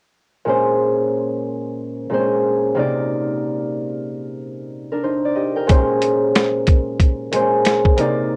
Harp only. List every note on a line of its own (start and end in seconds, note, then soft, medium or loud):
0.45 2.09 A#2 medium
0.45 2.10 G#3 medium
0.45 2.19 C#4 medium
0.49 2.13 C5 medium
2.10 2.81 A#2 medium
2.10 2.81 G#3 medium
2.10 2.20 C4 medium
2.14 2.71 C5 medium
2.19 2.74 C#4 medium
2.75 5.75 C3 medium
2.75 5.98 A#3 medium
2.75 4.98 D#4 medium
2.79 4.64 D5 medium
4.92 5.10 D4 medium
4.92 5.56 A#4 medium
5.03 5.31 D#4 medium
5.03 5.71 C5 medium
5.25 5.41 D5 medium
5.35 5.74 G4 medium
5.35 7.14 D#5 medium
5.56 7.69 A#4 medium
5.56 7.11 G5 medium
5.67 7.30 A#2 medium
5.67 7.32 G#3 medium
5.67 7.40 C#4 medium
5.71 7.35 C5 medium
7.32 8.03 A#2 medium
7.32 8.03 G#3 medium
7.32 7.42 C4 medium
7.36 7.93 C5 medium
7.41 7.95 C#4 medium
7.96 8.36 C3 medium
7.96 8.36 A#3 medium
7.96 8.36 D#4 medium
8.01 8.36 D5 loud